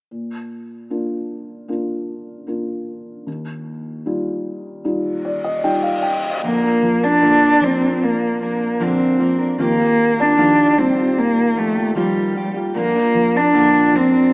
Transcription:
0.11 3.23 A#2 soft
0.90 1.67 A#3 soft
0.90 1.67 D4 soft
0.90 1.67 F4 soft
1.68 2.45 A#3 soft
1.68 2.46 D4 soft
1.68 2.46 F4 soft
2.47 3.24 A#3 soft
2.47 3.24 D4 soft
2.47 3.25 F4 soft
3.26 6.39 D#2 soft
4.06 4.82 G3 soft
4.06 4.83 D#4 soft
4.06 4.83 F4 soft
4.84 5.61 G3 soft
4.84 5.61 D#4 soft
4.84 5.61 F4 soft
4.84 reverse cymbal medium
5.25 5.43 D5 soft
5.44 5.63 D#5 soft
5.64 6.40 G3 soft
5.64 6.41 D#4 soft
5.64 6.41 F4 soft
5.64 5.82 G5 soft
5.83 6.02 F5 soft
6.02 6.40 G5 soft
6.42 6.62 A#2 medium
6.42 7.21 A#2 soft
6.42 6.62 D3 medium
6.42 6.63 F3 medium
6.42 6.62 A#3 medium
6.42 7.05 A#3 medium
6.42 6.62 D4 medium
6.42 6.60 A#4 medium
6.61 7.03 F3 soft
6.61 7.03 A#3 soft
6.61 7.01 D4 soft
6.61 7.00 A#4 soft
6.82 7.60 F3 soft
7.01 7.21 F3 soft
7.01 7.21 A#3 soft
7.01 7.22 D4 soft
7.01 7.66 D4 medium
7.01 7.21 A#4 soft
7.21 7.61 A#2 medium
7.21 7.99 A#2 soft
7.21 7.61 D3 medium
7.21 7.59 F3 medium
7.21 7.61 A#3 medium
7.21 7.62 D4 medium
7.21 7.62 A#4 medium
7.61 7.81 F3 soft
7.61 8.78 F3 soft
7.61 7.81 A#3 medium
7.61 8.05 C4 medium
7.61 7.80 D4 soft
7.61 7.79 A#4 soft
7.80 8.38 F3 soft
7.80 8.40 A#3 soft
7.80 8.40 D4 soft
7.80 8.40 A#4 soft
8.01 9.55 A#2 soft
8.01 8.42 A#3 medium
8.40 8.79 F3 soft
8.40 8.80 A#3 soft
8.40 8.84 A#3 medium
8.40 8.80 D4 soft
8.40 8.81 A#4 medium
8.80 9.19 A#2 medium
8.80 9.19 D3 medium
8.80 9.56 F3 soft
8.80 9.18 F3 medium
8.80 9.19 A#3 medium
8.80 9.40 C4 medium
8.80 9.20 D4 medium
8.80 9.20 A#4 medium
9.19 9.39 F3 soft
9.19 9.39 A#3 medium
9.19 9.39 D4 soft
9.19 9.37 A#4 medium
9.39 9.58 F3 soft
9.39 9.58 A#3 soft
9.39 9.59 D4 soft
9.39 9.58 A#4 soft
9.58 12.70 D#2 soft
9.58 9.78 D#3 medium
9.58 9.79 F3 medium
9.58 9.79 A#3 medium
9.58 10.22 A#3 medium
9.58 9.78 F4 medium
9.58 9.76 G4 medium
9.78 10.19 A#3 soft
9.78 10.18 F4 soft
9.78 10.16 G4 soft
9.98 11.15 A#2 soft
10.17 10.37 A#3 soft
10.17 10.80 D4 medium
10.17 10.38 F4 soft
10.17 10.37 G4 soft
10.37 10.77 D#3 medium
10.37 11.92 D#3 soft
10.37 10.75 F3 medium
10.37 10.77 A#3 medium
10.37 10.78 F4 medium
10.37 10.78 G4 medium
10.76 10.96 F3 soft
10.76 11.94 G3 soft
10.76 10.97 A#3 soft
10.76 11.20 C4 medium
10.76 10.97 F4 medium
10.76 10.95 G4 soft
10.96 11.55 A#3 soft
10.96 11.56 F4 soft
10.96 11.56 G4 soft
11.17 12.70 A#2 soft
11.17 11.60 A#3 medium
11.55 11.75 F3 soft
11.55 11.97 A3 medium
11.55 11.76 A#3 soft
11.55 11.76 F4 soft
11.55 11.74 G4 soft
11.75 11.95 A#3 soft
11.75 11.96 F4 soft
11.75 11.95 G4 soft
11.95 12.35 D#3 medium
11.95 12.33 F3 medium
11.95 12.72 G3 soft
11.95 12.52 G3 medium
11.95 12.34 A#3 medium
11.95 12.35 F4 medium
11.95 12.36 G4 medium
12.34 12.54 F3 soft
12.34 12.55 A#3 soft
12.34 12.55 F4 medium
12.34 12.53 G4 medium
12.54 12.74 A#3 soft
12.54 12.75 F4 soft
12.54 12.74 G4 soft
12.74 12.94 A#2 medium
12.74 13.53 A#2 soft
12.74 12.94 D3 medium
12.74 12.94 F3 medium
12.74 12.95 A#3 medium
12.74 13.38 A#3 medium
12.74 12.94 D4 medium
12.74 12.93 A#4 medium
12.94 13.35 F3 soft
12.94 13.34 A#3 soft
12.94 13.33 D4 soft
12.94 13.32 A#4 soft
13.14 13.92 F3 soft
13.33 13.53 F3 soft
13.33 13.53 A#3 soft
13.33 13.53 D4 soft
13.33 13.97 D4 medium
13.33 13.53 A#4 soft
13.53 13.93 A#2 medium
13.53 14.32 A#2 soft
13.53 13.93 D3 medium
13.53 13.91 F3 medium
13.53 13.92 A#3 medium
13.53 13.93 D4 medium
13.53 13.94 A#4 medium
13.92 14.12 F3 soft
13.92 14.33 F3 soft
13.92 14.13 A#3 medium
13.92 14.33 C4 medium
13.92 14.12 D4 soft
13.92 14.10 A#4 medium
14.12 14.33 F3 soft
14.12 14.33 A#3 soft
14.12 14.33 D4 soft
14.12 14.33 A#4 soft

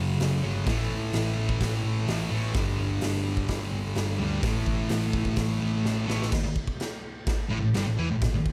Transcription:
0.00 0.18 F#1 loud
0.00 0.42 F#2 medium
0.00 0.43 C#3 loud
0.00 0.41 F#3 medium
0.20 0.41 F#1 loud
0.20 snare loud
0.20 open hi-hat medium
0.42 0.65 G1 loud
0.42 0.67 F#2 medium
0.42 0.66 C#3 medium
0.42 0.65 F#3 medium
0.66 0.88 A1 loud
0.66 2.29 A2 loud
0.66 2.30 E3 loud
0.66 kick loud
0.66 snare loud
0.66 open hi-hat medium
0.71 2.29 A3 loud
0.90 1.11 A1 loud
1.13 1.35 A1 loud
1.13 snare loud
1.13 open hi-hat medium
1.37 1.58 A1 medium
1.49 kick loud
1.61 1.82 A1 loud
1.61 kick loud
1.61 snare loud
1.61 open hi-hat medium
1.84 2.05 A1 medium
2.08 2.29 A1 medium
2.08 snare loud
2.08 open hi-hat medium
2.30 2.52 A1 loud
2.30 2.54 E3 medium
2.30 2.53 A3 medium
2.34 2.55 A2 medium
2.53 4.17 G2 loud
2.53 4.18 D3 loud
2.53 kick loud
2.53 snare loud
2.53 open hi-hat medium
2.58 4.17 G3 loud
2.79 3.00 G1 medium
3.01 3.45 G1 loud
3.01 snare loud
3.01 open hi-hat medium
3.37 kick loud
3.48 3.70 G1 medium
3.48 kick loud
3.48 snare loud
3.48 open hi-hat medium
3.72 3.94 G1 loud
3.95 4.17 G1 loud
3.95 snare loud
3.95 open hi-hat medium
4.19 4.40 D2 medium
4.19 4.41 D3 medium
4.19 4.41 G3 medium
4.23 4.43 G2 medium
4.41 4.64 A1 loud
4.41 6.06 A2 medium
4.41 6.07 E3 loud
4.41 kick loud
4.41 snare loud
4.41 open hi-hat medium
4.46 6.05 A3 loud
4.66 4.88 A1 medium
4.66 kick medium
4.89 5.12 A1 loud
4.89 snare loud
4.89 open hi-hat medium
5.13 5.35 A1 medium
5.13 kick medium
5.25 kick medium
5.36 5.59 A1 loud
5.36 kick loud
5.36 snare loud
5.36 open hi-hat medium
5.61 5.83 A1 medium
5.84 6.06 A1 loud
5.84 snare medium
6.06 6.29 A1 medium
6.06 6.31 A2 medium
6.06 6.31 E3 medium
6.06 6.29 A3 medium
6.06 snare loud
6.22 snare medium
6.32 kick loud
6.32 snare loud
6.32 crash loud
6.32 crash medium
6.44 muted distorted electric guitar stroke medium
6.44 muted picked electric bass stroke soft
6.56 kick loud
6.68 kick medium
6.80 snare loud
6.80 crash medium
7.27 kick loud
7.27 snare loud
7.27 crash medium
7.50 7.61 A1 medium
7.50 7.59 A2 loud
7.61 7.73 A1 medium
7.61 7.73 A2 medium
7.74 7.85 G1 medium
7.74 7.85 G2 loud
7.74 snare loud
7.74 crash medium
7.87 7.98 A1 medium
7.87 7.98 A2 medium
7.99 8.09 E2 loud
7.99 8.09 E3 loud
8.10 8.21 A1 medium
8.10 8.22 A2 medium
8.22 kick loud
8.22 snare loud
8.22 crash medium
8.34 muted distorted electric guitar stroke medium
8.34 muted picked electric bass stroke soft
8.46 kick loud

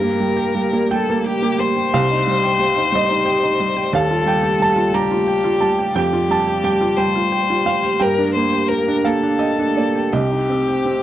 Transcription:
0.00 1.89 G2 medium
0.00 1.88 G3 medium
0.00 1.93 A#3 medium
0.00 0.30 A#3 medium
0.00 5.94 G4 medium
0.00 0.89 A#4 medium
0.00 0.87 D5 loud
0.20 0.49 G3 medium
0.37 0.66 G4 medium
0.55 0.84 G3 medium
0.73 1.01 A#3 medium
0.91 1.19 G3 medium
0.91 1.26 A4 medium
0.91 1.89 G5 loud
1.10 1.36 A#3 medium
1.26 1.53 G4 medium
1.26 1.61 G4 medium
1.42 1.69 A#3 medium
1.59 1.86 G3 medium
1.59 3.95 C5 medium
1.76 1.93 G4 medium
1.92 3.90 C2 medium
1.92 7.96 G3 medium
1.92 3.94 D#5 medium
1.92 2.91 F5 loud
2.11 2.38 D#4 medium
2.27 2.54 G3 medium
2.44 2.71 G4 medium
2.59 2.87 G3 medium
2.76 3.04 D#4 medium
2.92 3.20 G3 medium
2.92 3.26 D#5 loud
3.10 3.37 D#4 medium
3.26 3.53 G4 medium
3.43 3.70 D#4 medium
3.60 3.87 G3 medium
3.76 3.94 G4 medium
3.93 5.91 D#2 medium
3.93 4.96 A4 medium
3.93 8.00 F5 medium
3.93 4.26 F5 loud
4.11 4.37 F4 medium
4.26 4.53 G3 medium
4.26 4.59 G5 loud
4.43 4.70 G4 medium
4.60 4.87 G3 medium
4.60 4.93 A5 loud
4.76 5.04 F4 medium
4.94 5.21 G3 medium
4.94 5.96 G4 medium
4.94 5.57 A#5 loud
5.11 5.38 F4 medium
5.28 5.55 G4 medium
5.44 5.71 F4 medium
5.61 5.89 G3 medium
5.61 5.92 A5 loud
5.79 5.95 G4 medium
5.95 7.96 F2 medium
5.95 11.03 G4 medium
5.95 6.98 G4 medium
5.95 6.27 G5 loud
6.13 6.40 F4 medium
6.29 6.57 G3 medium
6.29 6.62 A5 loud
6.47 6.74 G4 medium
6.64 6.91 G3 medium
6.64 6.95 G5 loud
6.81 7.08 F4 medium
6.97 7.25 G3 medium
6.97 8.03 C5 medium
6.97 7.62 G5 loud
7.16 7.42 F4 medium
7.32 7.59 G4 medium
7.50 7.77 F4 medium
7.66 7.93 G3 medium
7.66 7.98 F5 loud
7.83 8.00 G4 medium
8.00 10.10 G2 medium
8.00 10.14 A#3 medium
8.00 8.33 A#4 medium
8.00 9.00 G5 loud
8.18 8.45 D4 medium
8.34 8.63 A#3 medium
8.34 8.70 C5 medium
8.53 8.80 G4 medium
8.69 8.98 A#3 medium
8.69 9.07 A#4 medium
8.88 9.16 D4 medium
9.05 9.34 A#3 medium
9.05 10.14 A4 medium
9.05 9.38 F5 medium
9.23 9.52 D4 medium
9.39 9.70 G4 medium
9.39 9.74 D#5 medium
9.59 9.88 D4 medium
9.77 10.07 A#3 medium
9.77 10.11 D5 medium
9.95 10.14 G4 medium
10.12 11.03 C2 medium
10.12 11.03 C4 medium
10.12 11.03 G4 medium
10.12 11.03 C5 medium
10.12 11.03 D#5 medium
10.31 10.61 D#4 medium
10.50 10.79 C4 soft
10.68 10.98 G4 soft
10.85 11.03 C4 medium

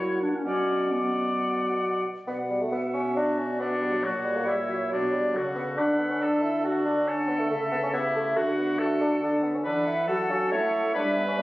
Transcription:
0.00 0.45 A#2 soft
0.00 0.29 F#3 soft
0.00 0.21 E4 medium
0.00 0.29 C#5 soft
0.00 0.45 F#5 soft
0.22 0.36 D4 medium
0.34 0.44 C#4 medium
0.45 2.02 B2 soft
0.45 0.91 F#3 soft
0.45 0.92 C#4 medium
0.45 0.91 D5 soft
0.45 0.90 F#5 soft
0.91 2.03 F#3 soft
0.91 1.83 B3 medium
0.91 2.04 D5 soft
0.91 2.03 F#5 soft
2.27 4.05 B2 soft
2.27 2.38 B3 medium
2.27 2.73 D5 soft
2.27 3.18 F#5 soft
2.50 2.63 G3 medium
2.61 2.72 A3 soft
2.71 2.82 B3 medium
2.71 3.59 E5 soft
2.94 3.16 C#4 medium
3.16 3.40 D4 medium
3.16 3.57 F#4 soft
3.16 3.61 D5 soft
3.39 3.59 C#4 medium
3.60 3.70 B3 medium
3.60 4.05 D4 soft
3.60 4.03 D5 soft
3.60 4.03 F#5 soft
3.81 3.94 G3 soft
3.93 4.02 F#3 soft
4.03 4.94 A#2 soft
4.03 4.13 F#3 medium
4.03 4.47 F#4 soft
4.03 5.32 C#5 soft
4.03 4.51 F#5 soft
4.24 4.37 G3 medium
4.36 4.45 A#3 medium
4.46 4.56 G3 medium
4.46 4.91 E4 soft
4.46 4.91 E5 soft
4.69 4.79 F#3 soft
4.90 5.35 B2 soft
4.90 5.12 F#3 medium
4.90 5.38 D4 soft
4.90 5.38 D5 soft
5.12 5.33 G3 medium
5.34 5.80 C#3 soft
5.34 5.44 F#3 medium
5.34 5.81 F#4 soft
5.34 7.94 A4 medium
5.34 5.78 F#5 soft
5.56 5.66 B3 medium
5.77 7.52 D3 medium
5.77 5.98 D4 medium
5.77 6.24 B4 medium
5.77 6.23 F#5 soft
5.99 6.11 B3 medium
6.10 6.23 C#4 medium
6.21 6.44 D4 medium
6.21 6.65 A4 soft
6.21 6.66 A5 soft
6.42 6.65 E4 medium
6.64 6.85 F#4 medium
6.64 7.10 F#4 soft
6.64 7.10 D5 soft
6.85 7.09 D4 medium
7.08 7.30 C#4 medium
7.08 7.93 A4 medium
7.08 7.51 F#5 soft
7.29 7.41 B3 medium
7.40 7.50 A3 medium
7.50 8.36 C#3 medium
7.50 7.60 A3 medium
7.50 7.93 E5 soft
7.72 7.77 B3 medium
7.83 7.88 C#4 medium
7.92 8.03 B3 medium
7.92 8.38 E4 medium
7.92 8.37 G4 soft
7.92 8.39 E5 soft
8.15 8.36 A3 medium
8.36 9.20 D3 medium
8.36 8.46 A3 medium
8.36 8.78 F#4 medium
8.36 8.80 F#4 medium
8.36 8.80 F#5 medium
8.58 8.80 B3 medium
8.79 9.00 A3 medium
8.79 9.21 F#4 medium
8.79 9.37 A4 medium
8.79 9.22 F#5 medium
9.01 9.11 D4 medium
9.22 9.67 D3 medium
9.22 9.45 D4 medium
9.22 9.62 A4 medium
9.22 9.46 F#5 medium
9.44 9.57 B3 medium
9.55 9.65 C#4 medium
9.65 10.09 E3 medium
9.65 9.86 D4 medium
9.65 9.95 A4 medium
9.65 10.05 B4 medium
9.65 10.07 F#5 medium
9.87 10.08 E4 medium
10.07 10.54 F#3 medium
10.07 10.32 F#4 medium
10.07 10.50 A4 medium
10.07 10.95 A4 medium
10.07 10.97 F#5 medium
10.31 10.54 C#4 medium
10.52 10.83 A3 medium
10.52 10.97 E4 medium
10.52 10.94 C#5 medium
10.93 11.41 G3 medium
10.93 11.19 D4 medium
10.93 11.37 B4 medium
10.93 11.42 B4 medium
10.93 11.37 E5 medium
11.17 11.27 B3 medium
11.28 11.40 C#4 medium
11.37 11.42 D4 medium
11.37 11.42 B4 medium
11.37 11.42 E5 medium

